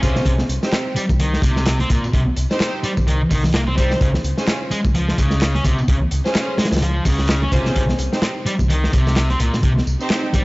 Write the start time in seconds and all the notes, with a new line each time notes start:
0.02 C#2 C3 C#4 F4 G#4 C5, kick, closed hi-hat, tambourine
0.16 snare, tambourine
0.25 C2 C3, kick, closed hi-hat, tambourine
0.38 snare, high conga
0.49 C2, closed hi-hat, tambourine
0.63 C4 D#4 G4 C5, snare, tambourine
0.72 snare, clap, closed hi-hat, tambourine, high conga
0.96 G3, closed hi-hat, tambourine, low conga
1.09 C2, kick, tambourine, high conga
1.20 D#3, closed hi-hat, tambourine
1.34 snare
1.42 C2 C3, kick, closed hi-hat, tambourine, high conga
1.56 snare, tambourine, low conga
1.66 snare, clap, closed hi-hat, tambourine
1.80 C4, closed hi-hat, high conga, low conga
1.90 C2 A#2, kick, closed hi-hat, tambourine
2.04 tambourine
2.13 C2 C3, kick, closed hi-hat, tambourine
2.27 high conga
2.36 C2, closed hi-hat, tambourine
2.50 C4 D#4 G4 C5, snare, tambourine
2.60 snare, clap, closed hi-hat, tambourine, high conga
2.83 G3, closed hi-hat, tambourine, low conga
2.97 C2, kick, tambourine, high conga
3.07 D#3, closed hi-hat, tambourine
3.30 C2 D#3, kick, open hi-hat, tambourine, high conga
3.44 snare, tambourine, low conga
3.54 A#3, snare, clap, closed hi-hat, tambourine
3.67 C2 C4, high conga, low conga
3.77 G3 C4 D#4 G4 C5, kick, closed hi-hat, tambourine
3.91 snare, tambourine
4.01 C#2 C#3, kick, closed hi-hat, tambourine
4.14 snare, high conga
4.24 C#2, closed hi-hat, tambourine
4.38 C#4 F4 G#4 C5, snare, tambourine
4.47 snare, clap, closed hi-hat, tambourine, high conga
4.71 G#3, closed hi-hat, tambourine, low conga
4.85 C#2, kick, tambourine, high conga
4.94 F3, closed hi-hat, tambourine
5.09 snare
5.18 C#2 C#3, kick, closed hi-hat, tambourine, high conga
5.31 snare, tambourine, low conga
5.41 snare, clap, closed hi-hat, tambourine
5.55 C#4, closed hi-hat, high conga, low conga
5.65 C#2 C3, kick, closed hi-hat, tambourine
5.78 tambourine
5.88 C#2 C#3, kick, closed hi-hat, tambourine
6.02 high conga
6.11 C#2, closed hi-hat, tambourine
6.25 C#4 F4 G#4 C5, snare, tambourine
6.35 snare, clap, closed hi-hat, tambourine, high conga
6.58 G#3, snare, closed hi-hat, tambourine, low conga
6.65 snare, closed hi-hat
6.72 C#2, snare, closed hi-hat, tambourine, high conga
6.76 snare, closed hi-hat
6.82 F3, closed hi-hat, tambourine
7.05 C#2 C#3, kick, open hi-hat, tambourine, high conga
7.19 snare, tambourine, low conga
7.29 snare, clap, closed hi-hat, tambourine
7.42 C#4, high conga, low conga
7.52 C#2 C3 C#4 F4 G#4 C5, kick, closed hi-hat, tambourine
7.66 snare, tambourine
7.76 C2 C3, kick, closed hi-hat, tambourine
7.89 snare, high conga
7.99 C2, closed hi-hat, tambourine
8.13 C4 D#4 G4 C5, snare, tambourine
8.22 snare, clap, closed hi-hat, tambourine, high conga
8.46 G3, closed hi-hat, tambourine, low conga
8.59 C2, kick, tambourine, high conga
8.69 D#3, closed hi-hat, tambourine
8.84 snare
8.93 C2 C3, kick, closed hi-hat, tambourine, high conga
9.06 snare, tambourine, low conga
9.16 snare, clap, closed hi-hat
9.30 C4, closed hi-hat, high conga, low conga
9.40 C2 A#2, closed hi-hat, tambourine
9.54 snare, tambourine
9.63 C2 C3, kick, closed hi-hat, tambourine
9.77 snare, high conga
9.87 C2, tambourine
10.01 C4 D#4 G4 C5, tambourine
10.10 snare, clap, closed hi-hat, tambourine, high conga
10.33 G3, kick, closed hi-hat, tambourine, low conga